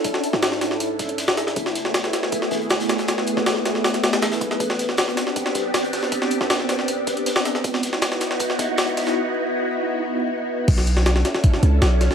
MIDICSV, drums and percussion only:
0, 0, Header, 1, 2, 480
1, 0, Start_track
1, 0, Tempo, 379747
1, 58, Time_signature, 4, 2, 24, 8
1, 15356, End_track
2, 0, Start_track
2, 0, Title_t, "Drums"
2, 54, Note_on_c, 9, 42, 83
2, 55, Note_off_c, 9, 42, 0
2, 55, Note_on_c, 9, 42, 86
2, 57, Note_on_c, 9, 36, 101
2, 177, Note_on_c, 9, 38, 52
2, 182, Note_off_c, 9, 42, 0
2, 184, Note_off_c, 9, 36, 0
2, 297, Note_on_c, 9, 42, 65
2, 303, Note_off_c, 9, 38, 0
2, 419, Note_on_c, 9, 38, 54
2, 423, Note_off_c, 9, 42, 0
2, 537, Note_off_c, 9, 38, 0
2, 537, Note_on_c, 9, 38, 116
2, 537, Note_on_c, 9, 42, 87
2, 539, Note_off_c, 9, 42, 0
2, 539, Note_on_c, 9, 42, 80
2, 541, Note_off_c, 9, 38, 0
2, 541, Note_on_c, 9, 38, 115
2, 658, Note_off_c, 9, 38, 0
2, 658, Note_on_c, 9, 38, 41
2, 665, Note_off_c, 9, 42, 0
2, 775, Note_off_c, 9, 38, 0
2, 775, Note_on_c, 9, 38, 55
2, 775, Note_on_c, 9, 42, 67
2, 780, Note_off_c, 9, 42, 0
2, 780, Note_on_c, 9, 42, 72
2, 897, Note_off_c, 9, 38, 0
2, 897, Note_on_c, 9, 38, 47
2, 907, Note_off_c, 9, 42, 0
2, 1015, Note_on_c, 9, 42, 88
2, 1024, Note_off_c, 9, 38, 0
2, 1028, Note_off_c, 9, 42, 0
2, 1028, Note_on_c, 9, 42, 74
2, 1155, Note_off_c, 9, 42, 0
2, 1255, Note_on_c, 9, 38, 51
2, 1256, Note_on_c, 9, 42, 69
2, 1257, Note_on_c, 9, 36, 93
2, 1260, Note_off_c, 9, 42, 0
2, 1260, Note_on_c, 9, 42, 57
2, 1378, Note_off_c, 9, 42, 0
2, 1378, Note_on_c, 9, 42, 41
2, 1381, Note_off_c, 9, 38, 0
2, 1384, Note_off_c, 9, 36, 0
2, 1495, Note_off_c, 9, 42, 0
2, 1495, Note_on_c, 9, 42, 90
2, 1498, Note_on_c, 9, 38, 95
2, 1509, Note_off_c, 9, 42, 0
2, 1509, Note_on_c, 9, 42, 83
2, 1618, Note_off_c, 9, 38, 0
2, 1618, Note_on_c, 9, 38, 110
2, 1635, Note_off_c, 9, 42, 0
2, 1736, Note_off_c, 9, 38, 0
2, 1736, Note_on_c, 9, 38, 57
2, 1736, Note_on_c, 9, 42, 65
2, 1738, Note_off_c, 9, 42, 0
2, 1738, Note_on_c, 9, 42, 66
2, 1858, Note_off_c, 9, 38, 0
2, 1858, Note_on_c, 9, 38, 42
2, 1865, Note_off_c, 9, 42, 0
2, 1975, Note_on_c, 9, 42, 83
2, 1977, Note_off_c, 9, 42, 0
2, 1977, Note_on_c, 9, 36, 108
2, 1977, Note_on_c, 9, 42, 76
2, 1984, Note_off_c, 9, 38, 0
2, 2098, Note_on_c, 9, 38, 54
2, 2100, Note_off_c, 9, 38, 0
2, 2100, Note_on_c, 9, 38, 36
2, 2103, Note_off_c, 9, 36, 0
2, 2103, Note_off_c, 9, 42, 0
2, 2217, Note_on_c, 9, 42, 65
2, 2220, Note_off_c, 9, 38, 0
2, 2220, Note_on_c, 9, 38, 45
2, 2224, Note_off_c, 9, 42, 0
2, 2224, Note_on_c, 9, 42, 71
2, 2337, Note_off_c, 9, 38, 0
2, 2337, Note_on_c, 9, 38, 49
2, 2350, Note_off_c, 9, 42, 0
2, 2454, Note_off_c, 9, 38, 0
2, 2454, Note_on_c, 9, 38, 110
2, 2454, Note_on_c, 9, 42, 86
2, 2456, Note_off_c, 9, 38, 0
2, 2456, Note_on_c, 9, 38, 117
2, 2460, Note_off_c, 9, 42, 0
2, 2460, Note_on_c, 9, 42, 80
2, 2578, Note_off_c, 9, 38, 0
2, 2578, Note_on_c, 9, 38, 49
2, 2579, Note_off_c, 9, 42, 0
2, 2579, Note_on_c, 9, 42, 37
2, 2695, Note_off_c, 9, 38, 0
2, 2695, Note_off_c, 9, 42, 0
2, 2695, Note_on_c, 9, 38, 58
2, 2695, Note_on_c, 9, 42, 67
2, 2698, Note_off_c, 9, 42, 0
2, 2698, Note_on_c, 9, 42, 74
2, 2820, Note_off_c, 9, 38, 0
2, 2820, Note_on_c, 9, 38, 50
2, 2825, Note_off_c, 9, 42, 0
2, 2933, Note_on_c, 9, 42, 89
2, 2936, Note_off_c, 9, 42, 0
2, 2936, Note_on_c, 9, 42, 83
2, 2937, Note_on_c, 9, 36, 105
2, 2946, Note_off_c, 9, 38, 0
2, 3059, Note_on_c, 9, 38, 51
2, 3062, Note_off_c, 9, 42, 0
2, 3063, Note_off_c, 9, 36, 0
2, 3171, Note_on_c, 9, 42, 81
2, 3179, Note_off_c, 9, 38, 0
2, 3179, Note_on_c, 9, 38, 91
2, 3298, Note_off_c, 9, 42, 0
2, 3303, Note_on_c, 9, 42, 36
2, 3305, Note_off_c, 9, 38, 0
2, 3406, Note_off_c, 9, 42, 0
2, 3406, Note_on_c, 9, 42, 57
2, 3419, Note_off_c, 9, 42, 0
2, 3419, Note_on_c, 9, 38, 114
2, 3419, Note_on_c, 9, 42, 88
2, 3540, Note_off_c, 9, 38, 0
2, 3540, Note_off_c, 9, 42, 0
2, 3540, Note_on_c, 9, 38, 99
2, 3540, Note_on_c, 9, 42, 80
2, 3658, Note_off_c, 9, 38, 0
2, 3658, Note_off_c, 9, 42, 0
2, 3658, Note_on_c, 9, 38, 102
2, 3658, Note_on_c, 9, 42, 76
2, 3771, Note_off_c, 9, 42, 0
2, 3771, Note_on_c, 9, 42, 55
2, 3781, Note_off_c, 9, 38, 0
2, 3781, Note_on_c, 9, 38, 37
2, 3891, Note_off_c, 9, 42, 0
2, 3891, Note_on_c, 9, 42, 80
2, 3898, Note_off_c, 9, 38, 0
2, 3898, Note_off_c, 9, 42, 0
2, 3898, Note_on_c, 9, 38, 102
2, 3898, Note_on_c, 9, 42, 79
2, 4020, Note_off_c, 9, 38, 0
2, 4020, Note_on_c, 9, 38, 51
2, 4025, Note_off_c, 9, 42, 0
2, 4128, Note_on_c, 9, 42, 62
2, 4139, Note_off_c, 9, 42, 0
2, 4139, Note_on_c, 9, 42, 67
2, 4147, Note_off_c, 9, 38, 0
2, 4259, Note_on_c, 9, 38, 55
2, 4265, Note_off_c, 9, 42, 0
2, 4377, Note_off_c, 9, 38, 0
2, 4377, Note_on_c, 9, 38, 114
2, 4377, Note_on_c, 9, 42, 90
2, 4379, Note_off_c, 9, 42, 0
2, 4379, Note_on_c, 9, 42, 79
2, 4383, Note_off_c, 9, 38, 0
2, 4383, Note_on_c, 9, 38, 120
2, 4500, Note_off_c, 9, 38, 0
2, 4500, Note_on_c, 9, 38, 43
2, 4505, Note_off_c, 9, 42, 0
2, 4617, Note_on_c, 9, 42, 70
2, 4619, Note_off_c, 9, 38, 0
2, 4619, Note_off_c, 9, 42, 0
2, 4619, Note_on_c, 9, 38, 55
2, 4619, Note_on_c, 9, 42, 68
2, 4740, Note_off_c, 9, 38, 0
2, 4740, Note_on_c, 9, 38, 47
2, 4745, Note_off_c, 9, 42, 0
2, 4857, Note_off_c, 9, 38, 0
2, 4857, Note_on_c, 9, 38, 98
2, 4860, Note_on_c, 9, 42, 93
2, 4981, Note_off_c, 9, 38, 0
2, 4981, Note_off_c, 9, 42, 0
2, 4981, Note_on_c, 9, 38, 52
2, 4981, Note_on_c, 9, 42, 60
2, 5100, Note_off_c, 9, 38, 0
2, 5100, Note_off_c, 9, 42, 0
2, 5100, Note_on_c, 9, 38, 107
2, 5100, Note_on_c, 9, 42, 78
2, 5101, Note_off_c, 9, 42, 0
2, 5101, Note_on_c, 9, 42, 61
2, 5221, Note_off_c, 9, 38, 0
2, 5221, Note_off_c, 9, 42, 0
2, 5221, Note_on_c, 9, 38, 103
2, 5221, Note_on_c, 9, 42, 79
2, 5333, Note_off_c, 9, 38, 0
2, 5333, Note_off_c, 9, 42, 0
2, 5333, Note_on_c, 9, 38, 104
2, 5333, Note_on_c, 9, 42, 72
2, 5339, Note_off_c, 9, 38, 0
2, 5339, Note_off_c, 9, 42, 0
2, 5339, Note_on_c, 9, 38, 100
2, 5339, Note_on_c, 9, 42, 77
2, 5456, Note_off_c, 9, 38, 0
2, 5456, Note_off_c, 9, 42, 0
2, 5456, Note_on_c, 9, 38, 101
2, 5456, Note_on_c, 9, 42, 82
2, 5461, Note_off_c, 9, 38, 0
2, 5461, Note_on_c, 9, 38, 38
2, 5572, Note_off_c, 9, 42, 0
2, 5572, Note_on_c, 9, 42, 71
2, 5577, Note_on_c, 9, 36, 95
2, 5579, Note_off_c, 9, 42, 0
2, 5579, Note_on_c, 9, 42, 77
2, 5587, Note_off_c, 9, 38, 0
2, 5701, Note_on_c, 9, 38, 50
2, 5704, Note_off_c, 9, 36, 0
2, 5705, Note_off_c, 9, 42, 0
2, 5817, Note_on_c, 9, 36, 107
2, 5817, Note_on_c, 9, 42, 85
2, 5820, Note_off_c, 9, 42, 0
2, 5820, Note_on_c, 9, 42, 94
2, 5827, Note_off_c, 9, 38, 0
2, 5929, Note_on_c, 9, 38, 41
2, 5940, Note_off_c, 9, 38, 0
2, 5940, Note_on_c, 9, 38, 53
2, 5943, Note_off_c, 9, 36, 0
2, 5946, Note_off_c, 9, 42, 0
2, 6058, Note_on_c, 9, 42, 70
2, 6062, Note_off_c, 9, 38, 0
2, 6062, Note_off_c, 9, 42, 0
2, 6062, Note_on_c, 9, 38, 44
2, 6062, Note_on_c, 9, 42, 68
2, 6178, Note_off_c, 9, 38, 0
2, 6178, Note_on_c, 9, 38, 50
2, 6188, Note_off_c, 9, 42, 0
2, 6286, Note_on_c, 9, 42, 87
2, 6293, Note_off_c, 9, 38, 0
2, 6293, Note_on_c, 9, 38, 114
2, 6297, Note_off_c, 9, 38, 0
2, 6297, Note_off_c, 9, 42, 0
2, 6297, Note_on_c, 9, 38, 115
2, 6297, Note_on_c, 9, 42, 86
2, 6418, Note_off_c, 9, 38, 0
2, 6418, Note_on_c, 9, 38, 48
2, 6423, Note_off_c, 9, 42, 0
2, 6430, Note_on_c, 9, 42, 42
2, 6536, Note_off_c, 9, 38, 0
2, 6536, Note_off_c, 9, 42, 0
2, 6536, Note_on_c, 9, 38, 57
2, 6536, Note_on_c, 9, 42, 72
2, 6540, Note_off_c, 9, 42, 0
2, 6540, Note_on_c, 9, 42, 67
2, 6658, Note_off_c, 9, 38, 0
2, 6658, Note_on_c, 9, 38, 48
2, 6666, Note_off_c, 9, 42, 0
2, 6775, Note_on_c, 9, 42, 88
2, 6776, Note_on_c, 9, 36, 110
2, 6778, Note_off_c, 9, 42, 0
2, 6778, Note_on_c, 9, 42, 83
2, 6784, Note_off_c, 9, 38, 0
2, 6898, Note_on_c, 9, 38, 51
2, 6902, Note_off_c, 9, 36, 0
2, 6904, Note_off_c, 9, 42, 0
2, 7009, Note_on_c, 9, 42, 63
2, 7014, Note_off_c, 9, 38, 0
2, 7014, Note_on_c, 9, 38, 57
2, 7015, Note_off_c, 9, 42, 0
2, 7015, Note_on_c, 9, 42, 70
2, 7140, Note_off_c, 9, 38, 0
2, 7141, Note_off_c, 9, 42, 0
2, 7255, Note_on_c, 9, 42, 94
2, 7256, Note_off_c, 9, 42, 0
2, 7256, Note_on_c, 9, 38, 115
2, 7256, Note_on_c, 9, 42, 88
2, 7264, Note_off_c, 9, 38, 0
2, 7264, Note_on_c, 9, 38, 125
2, 7382, Note_off_c, 9, 42, 0
2, 7385, Note_on_c, 9, 42, 44
2, 7390, Note_off_c, 9, 38, 0
2, 7495, Note_on_c, 9, 46, 81
2, 7497, Note_off_c, 9, 42, 0
2, 7497, Note_on_c, 9, 38, 37
2, 7497, Note_on_c, 9, 42, 68
2, 7608, Note_off_c, 9, 42, 0
2, 7608, Note_on_c, 9, 42, 39
2, 7618, Note_off_c, 9, 38, 0
2, 7618, Note_on_c, 9, 38, 38
2, 7622, Note_off_c, 9, 46, 0
2, 7734, Note_off_c, 9, 42, 0
2, 7735, Note_on_c, 9, 42, 86
2, 7736, Note_on_c, 9, 36, 114
2, 7739, Note_off_c, 9, 42, 0
2, 7739, Note_on_c, 9, 42, 86
2, 7744, Note_off_c, 9, 38, 0
2, 7860, Note_on_c, 9, 38, 52
2, 7862, Note_off_c, 9, 36, 0
2, 7865, Note_off_c, 9, 42, 0
2, 7972, Note_on_c, 9, 42, 60
2, 7979, Note_off_c, 9, 42, 0
2, 7979, Note_on_c, 9, 42, 71
2, 7987, Note_off_c, 9, 38, 0
2, 8100, Note_on_c, 9, 38, 58
2, 8105, Note_off_c, 9, 42, 0
2, 8215, Note_on_c, 9, 42, 87
2, 8217, Note_off_c, 9, 38, 0
2, 8217, Note_off_c, 9, 42, 0
2, 8217, Note_on_c, 9, 38, 115
2, 8217, Note_on_c, 9, 42, 89
2, 8222, Note_off_c, 9, 38, 0
2, 8222, Note_on_c, 9, 38, 108
2, 8339, Note_off_c, 9, 38, 0
2, 8339, Note_on_c, 9, 38, 44
2, 8343, Note_off_c, 9, 42, 0
2, 8457, Note_off_c, 9, 38, 0
2, 8457, Note_on_c, 9, 38, 56
2, 8457, Note_on_c, 9, 42, 68
2, 8461, Note_off_c, 9, 42, 0
2, 8461, Note_on_c, 9, 42, 70
2, 8580, Note_off_c, 9, 38, 0
2, 8580, Note_on_c, 9, 38, 47
2, 8588, Note_off_c, 9, 42, 0
2, 8697, Note_on_c, 9, 42, 89
2, 8698, Note_off_c, 9, 42, 0
2, 8698, Note_on_c, 9, 42, 73
2, 8706, Note_off_c, 9, 38, 0
2, 8825, Note_off_c, 9, 42, 0
2, 8936, Note_on_c, 9, 42, 64
2, 8937, Note_off_c, 9, 42, 0
2, 8937, Note_on_c, 9, 42, 70
2, 8938, Note_on_c, 9, 36, 98
2, 8938, Note_on_c, 9, 38, 50
2, 9062, Note_off_c, 9, 42, 0
2, 9062, Note_on_c, 9, 42, 45
2, 9064, Note_off_c, 9, 36, 0
2, 9065, Note_off_c, 9, 38, 0
2, 9179, Note_off_c, 9, 42, 0
2, 9179, Note_on_c, 9, 42, 90
2, 9181, Note_on_c, 9, 38, 104
2, 9185, Note_off_c, 9, 42, 0
2, 9185, Note_on_c, 9, 42, 77
2, 9300, Note_off_c, 9, 38, 0
2, 9300, Note_on_c, 9, 38, 116
2, 9311, Note_off_c, 9, 42, 0
2, 9420, Note_off_c, 9, 38, 0
2, 9420, Note_on_c, 9, 38, 56
2, 9420, Note_on_c, 9, 42, 67
2, 9424, Note_off_c, 9, 42, 0
2, 9424, Note_on_c, 9, 42, 67
2, 9542, Note_off_c, 9, 38, 0
2, 9542, Note_on_c, 9, 38, 44
2, 9551, Note_off_c, 9, 42, 0
2, 9658, Note_on_c, 9, 42, 90
2, 9659, Note_on_c, 9, 36, 111
2, 9660, Note_off_c, 9, 42, 0
2, 9660, Note_on_c, 9, 42, 88
2, 9668, Note_off_c, 9, 38, 0
2, 9776, Note_on_c, 9, 38, 40
2, 9783, Note_off_c, 9, 38, 0
2, 9783, Note_on_c, 9, 38, 55
2, 9785, Note_off_c, 9, 36, 0
2, 9787, Note_off_c, 9, 42, 0
2, 9895, Note_on_c, 9, 42, 70
2, 9900, Note_off_c, 9, 42, 0
2, 9900, Note_on_c, 9, 42, 72
2, 9906, Note_off_c, 9, 38, 0
2, 9906, Note_on_c, 9, 38, 51
2, 10021, Note_off_c, 9, 38, 0
2, 10021, Note_on_c, 9, 38, 53
2, 10026, Note_off_c, 9, 42, 0
2, 10133, Note_off_c, 9, 38, 0
2, 10133, Note_on_c, 9, 38, 118
2, 10138, Note_off_c, 9, 38, 0
2, 10138, Note_on_c, 9, 38, 118
2, 10138, Note_on_c, 9, 42, 88
2, 10139, Note_off_c, 9, 42, 0
2, 10139, Note_on_c, 9, 42, 83
2, 10254, Note_off_c, 9, 42, 0
2, 10254, Note_on_c, 9, 42, 41
2, 10261, Note_off_c, 9, 38, 0
2, 10261, Note_on_c, 9, 38, 52
2, 10372, Note_off_c, 9, 42, 0
2, 10372, Note_on_c, 9, 42, 69
2, 10378, Note_off_c, 9, 38, 0
2, 10378, Note_off_c, 9, 42, 0
2, 10378, Note_on_c, 9, 38, 58
2, 10378, Note_on_c, 9, 42, 74
2, 10502, Note_off_c, 9, 38, 0
2, 10502, Note_on_c, 9, 38, 51
2, 10505, Note_off_c, 9, 42, 0
2, 10612, Note_on_c, 9, 42, 89
2, 10619, Note_on_c, 9, 36, 111
2, 10620, Note_off_c, 9, 42, 0
2, 10620, Note_on_c, 9, 42, 89
2, 10628, Note_off_c, 9, 38, 0
2, 10741, Note_on_c, 9, 38, 54
2, 10745, Note_off_c, 9, 36, 0
2, 10747, Note_off_c, 9, 42, 0
2, 10853, Note_off_c, 9, 38, 0
2, 10853, Note_on_c, 9, 38, 57
2, 10860, Note_on_c, 9, 42, 71
2, 10864, Note_off_c, 9, 42, 0
2, 10864, Note_on_c, 9, 42, 65
2, 10980, Note_off_c, 9, 38, 0
2, 10990, Note_off_c, 9, 42, 0
2, 11093, Note_on_c, 9, 38, 117
2, 11099, Note_off_c, 9, 38, 0
2, 11099, Note_on_c, 9, 38, 118
2, 11099, Note_on_c, 9, 42, 92
2, 11105, Note_off_c, 9, 42, 0
2, 11105, Note_on_c, 9, 42, 86
2, 11213, Note_off_c, 9, 42, 0
2, 11213, Note_on_c, 9, 42, 39
2, 11225, Note_off_c, 9, 38, 0
2, 11339, Note_off_c, 9, 42, 0
2, 11339, Note_on_c, 9, 46, 87
2, 11340, Note_on_c, 9, 38, 36
2, 11340, Note_on_c, 9, 42, 68
2, 11455, Note_off_c, 9, 42, 0
2, 11455, Note_on_c, 9, 42, 42
2, 11461, Note_off_c, 9, 38, 0
2, 11461, Note_on_c, 9, 38, 41
2, 11466, Note_off_c, 9, 46, 0
2, 11581, Note_off_c, 9, 42, 0
2, 11588, Note_off_c, 9, 38, 0
2, 13499, Note_on_c, 9, 36, 108
2, 13499, Note_on_c, 9, 42, 87
2, 13499, Note_on_c, 9, 49, 91
2, 13621, Note_on_c, 9, 38, 56
2, 13625, Note_off_c, 9, 36, 0
2, 13625, Note_off_c, 9, 42, 0
2, 13625, Note_off_c, 9, 49, 0
2, 13740, Note_on_c, 9, 42, 71
2, 13748, Note_off_c, 9, 38, 0
2, 13861, Note_on_c, 9, 38, 53
2, 13866, Note_off_c, 9, 42, 0
2, 13979, Note_off_c, 9, 38, 0
2, 13979, Note_on_c, 9, 38, 117
2, 13979, Note_on_c, 9, 42, 91
2, 14101, Note_off_c, 9, 38, 0
2, 14101, Note_on_c, 9, 38, 49
2, 14106, Note_off_c, 9, 42, 0
2, 14218, Note_off_c, 9, 38, 0
2, 14218, Note_on_c, 9, 38, 57
2, 14218, Note_on_c, 9, 42, 73
2, 14339, Note_off_c, 9, 38, 0
2, 14339, Note_on_c, 9, 38, 51
2, 14345, Note_off_c, 9, 42, 0
2, 14456, Note_on_c, 9, 42, 88
2, 14457, Note_on_c, 9, 36, 109
2, 14466, Note_off_c, 9, 38, 0
2, 14580, Note_on_c, 9, 38, 53
2, 14582, Note_off_c, 9, 42, 0
2, 14584, Note_off_c, 9, 36, 0
2, 14698, Note_on_c, 9, 42, 70
2, 14706, Note_off_c, 9, 38, 0
2, 14825, Note_off_c, 9, 42, 0
2, 14938, Note_on_c, 9, 38, 115
2, 14938, Note_on_c, 9, 42, 91
2, 15065, Note_off_c, 9, 38, 0
2, 15065, Note_off_c, 9, 42, 0
2, 15179, Note_on_c, 9, 38, 37
2, 15179, Note_on_c, 9, 42, 68
2, 15303, Note_off_c, 9, 38, 0
2, 15303, Note_on_c, 9, 38, 40
2, 15306, Note_off_c, 9, 42, 0
2, 15356, Note_off_c, 9, 38, 0
2, 15356, End_track
0, 0, End_of_file